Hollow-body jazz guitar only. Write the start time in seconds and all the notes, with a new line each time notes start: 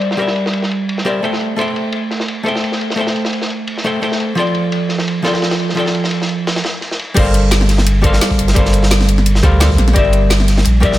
Already playing: G3 G4 C5 D5 E5
0.17 G3 G4 A#4 D5
0.22 E5
1.05 G3 G4 A#4 C5 D5 E5
1.23 A3 A4 C5 E5 G5
1.56 A3 A4 C5 E5
1.61 G5
2.43 A3 A4 C5 E5
2.48 G5
2.96 A3 A4 C5 E5
3.01 G5
3.84 A3 A4 C5 E5 G5
4.02 A3 A4 C5 E5 G5
4.35 F3 F4 A4 D5
4.40 G5
5.22 F3 F4 A4 D5
5.27 G5
5.75 F3 F4 A4 D5
5.80 G5
7.14 G3 G4 A4 A#4
7.18 C5 F5
8.02 G3 G4 A4 A#4 C5
8.06 F5
8.54 G3 G4 A4 A#4 C5
8.59 F5
9.43 G3 G4 A4 A#4 C5 F5
9.60 G3 G4 A4 A#4 C5 F5
9.93 G3 G4 A#4 D5
9.98 E5
10.80 G3 G4 A#4 D5
10.85 E5